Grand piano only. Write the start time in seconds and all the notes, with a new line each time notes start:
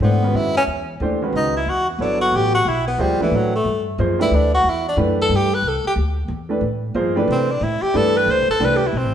0.01 E3 A3 D4 G4 C5
0.23 D#3 G#3 C#4 F#4 B4
1.01 E3 A3 D4 G4 C5
1.22 D#3 G#3 C#4 F#4 B4
2.00 F#3 B3 E4 A4 C#5
2.98 F3 A#3 D#4 G#4 C5
3.20 E3 A3 D4 G4 B4
3.99 F3 A#3 D#4 G#4 C5
4.19 E3 A3 D4 G4 B4
4.97 E3 A3 D4 G4 B4
6.49 E3 A3 D4 G4 B4
6.95 F3 A#3 D#4 G#4 C5
7.15 E3 A3 D4 G4 B4
7.94 E3 A3 D4 G4 B4
8.60 E3 A3 D4 G4 B4